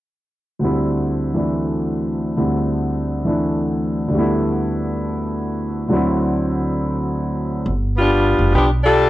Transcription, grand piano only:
0.59 2.35 D2 soft
0.59 2.36 D3 soft
0.59 2.36 G3 soft
0.59 2.36 C4 soft
0.64 1.35 E4 soft
1.34 2.37 E3 soft
1.34 2.38 A3 soft
1.34 2.38 D4 soft
1.34 2.36 E4 soft
2.37 4.06 D2 soft
2.37 4.09 D3 soft
2.37 4.11 G3 soft
2.37 4.14 C4 soft
2.37 3.26 E4 soft
3.24 4.13 E3 soft
3.24 4.13 A3 soft
3.24 4.14 D4 soft
3.24 4.15 E4 soft
4.08 5.87 D2 soft
4.08 5.88 D3 soft
4.12 5.89 G3 soft
4.12 5.91 A3 soft
4.17 5.92 B3 soft
4.17 5.91 E4 soft
5.88 7.65 D2 soft
5.88 7.66 D3 soft
5.88 7.66 F#3 soft
5.88 7.67 C4 soft
5.93 7.68 E4 soft

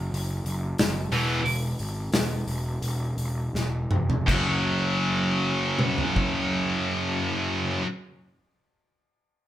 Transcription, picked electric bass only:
0.12 0.40 F#1 medium
0.45 0.73 F#1 medium
0.79 1.07 F#1 medium
1.11 1.40 E1 medium
1.44 1.73 E1 medium
1.80 2.09 G#1 medium
2.12 2.42 E1 medium
2.47 2.77 E1 medium
2.82 3.13 E1 medium
3.17 3.48 E1 medium
3.54 3.86 E1 medium
3.92 4.23 F1 medium
4.28 7.79 F#1 medium

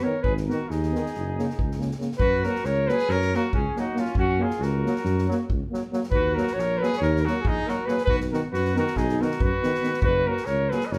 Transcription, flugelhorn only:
0.03 0.22 C#5 loud
0.22 0.34 B4 loud
0.46 0.72 A#4 medium
0.70 2.01 G#4 medium
2.18 2.45 B4 loud
2.44 2.67 A#4 loud
2.65 2.90 C#5 loud
2.89 3.14 B4 loud
3.12 3.38 C#5 loud
3.36 3.54 A#4 medium
3.54 3.80 G#4 medium
3.79 4.02 F#4 medium
4.00 4.18 F4 medium
4.18 4.44 F#4 loud
4.43 4.65 G#4 loud
4.63 5.51 A#4 loud
6.11 6.36 B4 loud
6.35 6.55 A#4 loud
6.53 6.79 C#5 loud
6.78 6.96 B4 loud
6.97 7.23 C#5 loud
7.21 7.43 A#4 medium
7.41 7.68 G#4 loud
7.66 7.87 A#4 loud
7.85 8.04 B4 loud
8.05 8.16 B4 loud
8.32 8.40 A#4 medium
8.51 8.74 B4 medium
8.76 8.98 A#4 loud
8.96 9.23 G#4 loud
9.21 9.43 A#4 medium
9.41 10.02 B4 loud
10.05 10.28 B4 loud
10.27 10.47 A#4 loud
10.46 10.71 C#5 loud
10.69 10.88 B4 loud
10.86 10.93 D#5 medium
10.92 10.98 C#5 medium

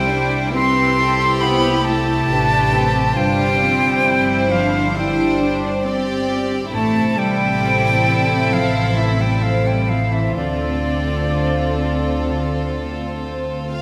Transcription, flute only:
0.00 0.49 G5 loud
0.55 1.42 C6 loud
1.41 1.86 B5 medium
1.85 3.19 A5 loud
3.17 4.53 G5 loud
4.51 4.96 F5 medium
4.98 5.84 G5 medium
6.73 7.20 A5 medium
7.18 8.55 G5 loud
8.53 8.99 F5 medium
8.97 9.23 E5 medium
9.21 9.44 G5 medium
9.42 9.69 F5 medium
9.67 9.91 G5 medium
9.89 10.14 F5 medium
10.12 10.36 E5 medium
10.36 13.19 D5 medium

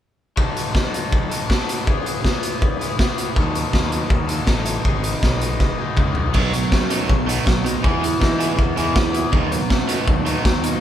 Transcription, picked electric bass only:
3.37 3.65 D#2 medium
3.74 4.02 D#2 medium
4.10 4.39 D#2 medium
4.47 4.76 A1 medium
4.85 5.14 G#1 medium
5.23 5.60 B1 medium
5.60 5.74 F#1 medium
5.97 6.14 C#2 medium
6.17 6.33 B1 medium
6.35 6.63 B1 medium
6.72 7.00 F#2 medium
7.10 7.38 B1 medium
7.47 7.75 B1 medium
7.85 8.13 E2 medium
8.22 8.50 E3 medium
8.59 8.73 E2 medium
8.78 8.92 E2 medium
8.95 9.24 E2 medium
9.33 9.61 D#2 medium
9.71 9.99 F#2 medium
10.08 10.36 D#2 medium
10.45 10.73 D#2 medium

